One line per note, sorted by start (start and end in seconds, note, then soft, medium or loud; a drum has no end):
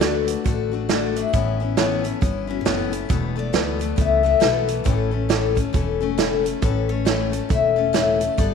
0.00 0.34 D2 medium
0.00 0.27 D3 medium
0.00 0.28 A3 medium
0.00 0.27 D4 medium
0.00 0.40 F#4 medium
0.00 0.26 F#4 medium
0.00 0.40 A4 medium
0.00 0.43 B4 medium
0.00 0.41 D5 medium
0.00 snare loud
0.00 closed hi-hat medium
0.27 0.44 A3 soft
0.27 0.45 D4 soft
0.27 0.45 F#4 medium
0.27 closed hi-hat medium
0.44 1.22 A1 medium
0.44 0.71 D3 medium
0.44 0.72 A3 medium
0.44 0.72 D4 medium
0.44 0.70 F#4 medium
0.44 0.90 A4 medium
0.44 kick loud
0.44 closed hi-hat medium
0.71 0.88 A3 soft
0.71 0.89 D4 soft
0.71 0.89 F#4 medium
0.89 1.16 D3 medium
0.89 1.16 A3 medium
0.89 1.16 D4 medium
0.89 1.28 F#4 medium
0.89 1.15 F#4 medium
0.89 1.28 A4 medium
0.89 1.28 D5 medium
0.89 snare loud
0.89 closed hi-hat medium
1.16 1.33 A3 soft
1.16 1.34 D4 soft
1.16 2.53 E4 medium
1.16 1.33 F#4 medium
1.16 closed hi-hat medium
1.33 2.10 A1 medium
1.33 1.60 A2 medium
1.33 1.60 E3 medium
1.33 1.60 B3 medium
1.33 1.60 C#4 medium
1.33 1.59 E4 medium
1.33 kick loud
1.33 closed hi-hat medium
1.60 1.77 B3 soft
1.60 1.77 C#4 soft
1.60 1.77 E4 medium
1.77 2.04 A2 medium
1.77 2.04 E3 medium
1.77 2.04 B3 medium
1.77 2.04 C#4 medium
1.77 2.17 E4 medium
1.77 2.03 E4 medium
1.77 2.16 A4 medium
1.77 2.17 C#5 loud
1.77 snare loud
1.77 closed hi-hat medium
2.04 2.20 B3 soft
2.04 2.21 C#4 medium
2.04 2.21 E4 medium
2.04 closed hi-hat medium
2.21 2.59 G1 medium
2.21 2.48 E3 medium
2.21 2.48 B3 medium
2.21 2.47 C#4 medium
2.21 2.46 E4 medium
2.21 kick loud
2.21 closed hi-hat medium
2.47 2.65 B3 soft
2.47 2.65 C#4 soft
2.47 2.65 E4 medium
2.47 2.60 F#4 medium
2.61 2.66 G#4 medium
2.65 3.03 F#1 medium
2.65 2.92 A2 medium
2.65 2.92 E3 medium
2.65 2.92 B3 medium
2.65 2.92 C#4 medium
2.65 3.05 E4 medium
2.65 2.91 E4 medium
2.65 3.05 A4 medium
2.65 3.12 A4 medium
2.65 3.05 C#5 medium
2.65 snare loud
2.65 closed hi-hat medium
2.92 3.09 B3 soft
2.92 3.10 C#4 soft
2.92 3.09 E4 medium
2.92 closed hi-hat medium
3.09 3.48 E1 medium
3.09 3.36 E2 medium
3.09 3.36 B2 medium
3.09 3.37 E3 medium
3.09 3.36 A3 medium
3.09 3.35 B3 medium
3.09 3.34 A4 medium
3.09 3.36 B4 loud
3.09 kick loud
3.09 closed hi-hat medium
3.36 3.52 E3 soft
3.36 3.52 A3 soft
3.36 3.53 B3 medium
3.36 3.53 A4 soft
3.36 3.95 D5 loud
3.53 3.91 D2 medium
3.53 3.80 E2 medium
3.53 3.80 B2 medium
3.53 3.80 E3 medium
3.53 3.79 A3 medium
3.53 3.79 B3 medium
3.53 3.93 E4 medium
3.53 3.93 A4 medium
3.53 3.78 A4 medium
3.53 3.93 B4 medium
3.53 snare loud
3.53 closed hi-hat medium
3.79 3.95 E3 soft
3.79 3.96 A3 soft
3.79 3.96 B3 soft
3.79 3.97 A4 soft
3.79 closed hi-hat medium
3.96 4.35 C#2 medium
3.96 4.24 E3 medium
3.96 4.23 A3 medium
3.96 4.23 B3 medium
3.96 4.22 A4 medium
3.96 kick loud
3.96 closed hi-hat medium
4.01 4.25 E5 medium
4.23 4.39 E3 soft
4.23 4.40 A3 soft
4.23 4.40 B3 medium
4.23 4.40 A4 medium
4.23 4.43 E5 loud
4.40 4.79 B1 medium
4.40 4.68 E2 medium
4.40 4.68 B2 medium
4.40 4.68 E3 medium
4.40 4.68 A3 medium
4.40 4.68 B3 medium
4.40 4.81 E4 medium
4.40 4.66 A4 medium
4.40 4.81 A4 medium
4.40 4.81 B4 medium
4.40 snare loud
4.40 closed hi-hat medium
4.44 4.87 B4 medium
4.68 4.84 E3 soft
4.68 4.84 A3 soft
4.68 4.85 B3 medium
4.68 4.85 A4 soft
4.68 closed hi-hat medium
4.84 5.62 A1 loud
4.84 5.12 A2 medium
4.84 5.12 E3 medium
4.84 5.12 A3 medium
4.84 5.11 C#4 medium
4.84 5.10 A4 medium
4.84 6.18 A4 medium
4.84 kick loud
4.84 closed hi-hat medium
5.11 5.28 A3 soft
5.11 5.29 C#4 soft
5.11 5.29 A4 soft
5.29 5.56 A2 medium
5.29 5.56 E3 medium
5.29 5.56 A3 medium
5.29 5.55 C#4 medium
5.29 5.69 E4 medium
5.29 5.69 A4 medium
5.29 5.54 A4 medium
5.29 5.69 C#5 medium
5.29 snare loud
5.29 closed hi-hat medium
5.55 5.73 A3 soft
5.55 5.73 C#4 medium
5.55 5.73 A4 medium
5.55 kick medium
5.55 closed hi-hat medium
5.73 6.51 E1 medium
5.73 6.00 E3 medium
5.73 6.01 A3 medium
5.73 6.00 C#4 medium
5.73 5.99 A4 medium
5.73 kick loud
5.73 closed hi-hat medium
6.01 6.17 A3 medium
6.01 6.18 C#4 medium
6.01 6.18 A4 medium
6.18 6.45 A2 medium
6.18 6.45 E3 medium
6.18 6.45 A3 medium
6.18 6.44 C#4 medium
6.18 6.57 E4 medium
6.18 6.57 A4 medium
6.18 6.62 A4 medium
6.18 6.43 A4 medium
6.18 6.57 C#5 medium
6.18 snare loud
6.18 closed hi-hat medium
6.44 6.62 A3 soft
6.44 6.62 C#4 soft
6.44 6.62 A4 soft
6.44 closed hi-hat medium
6.62 7.39 A1 medium
6.62 6.89 A2 medium
6.62 6.89 E3 medium
6.62 6.89 A3 medium
6.62 6.89 C#4 medium
6.62 6.88 A4 medium
6.62 6.87 B4 medium
6.62 kick loud
6.62 closed hi-hat medium
6.89 7.05 A3 soft
6.89 7.06 C#4 soft
6.89 7.06 A4 medium
6.89 7.51 C#5 medium
7.05 7.32 A2 medium
7.05 7.33 E3 medium
7.05 7.32 A3 medium
7.05 7.31 C#4 medium
7.05 7.45 E4 medium
7.05 7.46 A4 medium
7.05 7.30 A4 medium
7.05 7.45 C#5 medium
7.05 snare loud
7.05 closed hi-hat medium
7.32 7.49 A3 soft
7.32 7.49 C#4 soft
7.32 7.50 A4 soft
7.32 closed hi-hat medium
7.49 8.27 E1 medium
7.49 7.76 E3 medium
7.49 7.77 A3 medium
7.49 7.76 C#4 medium
7.49 7.75 A4 medium
7.49 7.92 E5 medium
7.49 kick loud
7.49 closed hi-hat medium
7.76 7.93 A3 soft
7.76 7.93 C#4 soft
7.76 7.93 A4 medium
7.93 8.20 A2 medium
7.93 8.21 E3 medium
7.93 8.21 A3 medium
7.93 8.20 C#4 medium
7.93 8.34 E4 medium
7.93 8.19 A4 loud
7.93 8.34 A4 medium
7.93 8.34 C#5 medium
7.93 8.38 E5 medium
7.93 snare loud
7.93 closed hi-hat medium
8.20 8.38 A3 soft
8.20 8.38 C#4 soft
8.20 8.38 A4 soft
8.20 closed hi-hat medium
8.38 8.54 G1 medium
8.38 8.54 G3 medium
8.38 8.54 B3 medium
8.38 8.54 D4 medium
8.38 8.54 A4 medium
8.38 8.54 D5 medium
8.38 kick loud
8.38 closed hi-hat medium